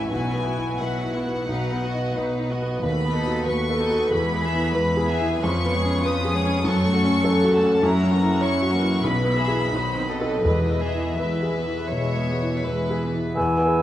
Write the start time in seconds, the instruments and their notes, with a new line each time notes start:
Already playing: grand piano A1 C#4 E4 C#5 E5
0.09 grand piano B1, cello section B2, viola section F#3 E4, violin section F#4 B4 G#5
0.33 grand piano B3
0.44 viola section B3 F#4, violin section E4 F#4
0.57 grand piano E4
0.79 cello section B2, viola section F#3 E4, violin section F#4 B4 F#5, grand piano B4
1.03 grand piano E4
1.15 viola section B3 F#4, violin section E4 F#4
1.26 grand piano B3
1.48 grand piano B1, cello section B2, viola section F#3 D#4, violin section D#4 B4
1.72 grand piano B3
1.84 viola section B3 F#4, violin section F#4 D#5
1.94 grand piano D#4
2.16 cello section B2, viola section F#3 D#4, violin section D#4 B4, grand piano B4
2.39 grand piano D#4
2.51 viola section B3 F#4, violin section F#4 D#5
2.62 grand piano B3
2.82 grand piano D#2, cello section D#2, viola section A3 F#4, violin section B4 B5
3.04 grand piano B3
3.15 viola section B3 D#4, violin section A4 D#5
3.27 grand piano F#4
3.47 cello section D#2, viola section A3 F#4, violin section B4 C#6, grand piano B4
3.70 grand piano A4
3.79 viola section B3 D#4, violin section A4 D#5
3.90 grand piano F#4
4.11 grand piano E2, cello section E2, viola section G#3 E4, violin section B4 B5
4.32 grand piano B3
4.43 viola section B3 G#4, violin section G#4 E5
4.54 grand piano E4
4.74 cello section E2, viola section G#3 E4, violin section B4, grand piano B4
4.97 grand piano G#4
5.07 viola section B3 G#4, violin section G#4 E5 G#5
5.20 grand piano E4
5.42 cello section F2, grand piano F2, viola section F3 C#4, violin section F4 B4 C#6
5.65 grand piano B3
5.73 viola section G#3 B3, violin section G#4 C#5
5.84 grand piano C#4
6.04 cello section F2, viola section F3 C#4, violin section F4 B4 D#6, grand piano B4
6.25 grand piano G#4
6.34 viola section G#3 B3, violin section G#4 C#5
6.45 grand piano C#4
6.63 grand piano F#2, cello section F#2, viola section F#3 C#4, violin section A4 C#5 C#6
6.84 grand piano A3
6.93 viola section A3, violin section F#4 A4
7.04 grand piano C#4
7.22 cello section F#2, viola section F#3 C#4, violin section A4 C#5, grand piano A4
7.43 grand piano F#4
7.53 viola section A3, violin section F#4 A4 A5
7.63 grand piano C#4
7.82 grand piano F#2, cello section F#2, viola section F#3 C#4, violin section E4 C#5 A#5
8.03 grand piano C#4
8.12 viola section E3 A#3, violin section F#4 A#4
8.21 grand piano E4
8.41 cello section F#2, viola section F#3 C#4, violin section E4 C#5 C#6, grand piano C#5
8.62 grand piano F#4
8.72 viola section E3 A#3, violin section F#4 A#4
8.81 grand piano E4
9.03 grand piano B1, timpani B2, cello section B2, viola section G#3 E4, violin section B4 B5
9.24 grand piano B3
9.37 viola section E3 B3, violin section G#4 E5
9.48 grand piano E4 G#4
9.71 grand piano B1, cello section B2, viola section D#3 D#4, violin section B4 C5
9.95 grand piano C4
10.08 viola section F#3 C4, violin section A4 B4 D#5
10.20 grand piano D#4 A4
10.44 grand piano E2, cello section E2, timpani E2, viola section G#3 E4, violin section B4 D#5
10.69 grand piano B3
10.81 viola section E3 B3, violin section G#4 E5
10.93 grand piano E4
11.18 cello section E2, viola section G#3 E4, violin section B4 E5, grand piano B4
11.43 grand piano G#4
11.55 viola section E3 B3
11.66 grand piano E4
11.91 cello section E2, grand piano B2, viola section G#3 E4, violin section C#5
12.15 grand piano B3
12.29 viola section E3 B3
12.42 grand piano E4
12.64 cello section E2, viola section G#3 E4, violin section B4, grand piano B4
12.90 grand piano G#4
13.01 viola section E3 B3
13.14 grand piano E4
13.35 grand piano E2, bassoon B3, clarinet E4, french horn section B4, cor anglais E5, flute G#5
13.57 grand piano B3
13.67 french horn section G#4
13.79 grand piano E4